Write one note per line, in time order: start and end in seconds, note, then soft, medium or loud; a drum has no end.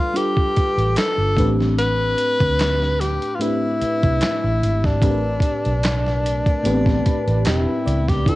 0.00 0.14 G3 medium
0.00 0.14 D4 medium
0.00 0.15 F4 medium
0.00 0.18 F4 medium
0.00 0.16 A4 medium
0.00 0.17 B4 medium
0.14 1.36 G3 medium
0.14 1.36 D4 medium
0.14 1.37 F4 medium
0.14 0.97 G4 loud
0.14 1.37 A4 medium
0.14 1.38 B4 medium
0.14 closed hi-hat medium
0.37 kick medium
0.56 muted fingered electric bass stroke soft
0.56 kick medium
0.56 closed hi-hat medium
0.78 0.95 A1 medium
0.78 closed hi-hat soft
0.96 1.55 A4 medium
0.96 snare loud
0.96 clap medium
0.96 closed hi-hat medium
1.18 1.35 G1 medium
1.36 2.14 A1 medium
1.36 2.76 A2 medium
1.36 2.76 A3 medium
1.36 1.44 B3 medium
1.36 2.77 D4 medium
1.36 2.77 G4 medium
1.36 2.77 B4 medium
1.36 kick medium
1.36 closed hi-hat medium
1.44 2.80 C4 medium
1.61 snare soft
1.79 3.02 B4 loud
1.79 closed hi-hat medium
2.18 closed hi-hat medium
2.40 3.17 D2 medium
2.40 kick medium
2.40 closed hi-hat soft
2.59 snare loud
2.59 clap medium
2.59 closed hi-hat medium
2.82 snare soft
3.00 3.36 G4 medium
3.00 snare soft
3.00 closed hi-hat medium
3.22 closed hi-hat soft
3.35 3.42 F4 medium
3.39 4.78 A2 medium
3.39 4.79 A3 medium
3.39 4.79 C4 medium
3.39 4.79 D4 medium
3.39 4.87 E4 medium
3.39 4.79 G4 medium
3.39 4.80 B4 medium
3.39 closed hi-hat medium
3.81 muted fingered electric bass stroke soft
3.81 closed hi-hat medium
4.03 4.20 C2 medium
4.03 kick medium
4.03 closed hi-hat soft
4.21 snare loud
4.21 clap medium
4.21 closed hi-hat medium
4.44 4.60 A1 medium
4.63 5.02 G#1 medium
4.63 closed hi-hat medium
4.84 7.46 D4 medium
4.84 kick medium
4.84 snare soft
5.01 5.39 A1 loud
5.01 6.40 A2 medium
5.01 6.40 A3 medium
5.01 6.41 C4 medium
5.01 6.41 D4 medium
5.01 6.42 G4 medium
5.01 5.10 A#4 medium
5.01 kick loud
5.01 closed hi-hat medium
5.11 6.45 B4 medium
5.40 kick medium
5.40 closed hi-hat medium
5.65 6.42 B1 medium
5.65 closed hi-hat soft
5.83 snare loud
5.83 clap medium
5.83 closed hi-hat medium
6.06 snare soft
6.26 closed hi-hat medium
6.46 kick medium
6.46 closed hi-hat soft
6.62 7.02 A1 medium
6.62 8.02 A2 medium
6.62 8.03 A3 medium
6.62 6.71 B3 medium
6.62 8.04 D4 medium
6.62 8.04 G4 medium
6.62 closed hi-hat medium
6.66 8.04 B4 medium
6.70 8.06 C4 medium
6.86 kick medium
6.86 snare soft
7.05 7.42 B5 medium
7.05 muted fingered electric bass stroke soft
7.05 kick medium
7.05 closed hi-hat medium
7.27 7.44 A1 medium
7.27 closed hi-hat soft
7.45 7.65 E1 medium
7.45 8.10 E4 medium
7.45 7.83 G5 medium
7.45 snare loud
7.45 clap medium
7.45 closed hi-hat medium
7.86 8.23 C#2 medium
7.86 8.23 D5 medium
7.86 closed hi-hat medium
8.08 8.30 G4 medium
8.08 kick medium
8.08 snare soft
8.08 closed hi-hat soft
8.25 8.35 D2 loud
8.25 8.35 D3 medium
8.25 8.35 D4 medium
8.25 8.35 E4 medium
8.25 8.35 F4 medium
8.25 8.35 A4 medium
8.25 8.34 B4 medium
8.25 kick loud
8.25 closed hi-hat medium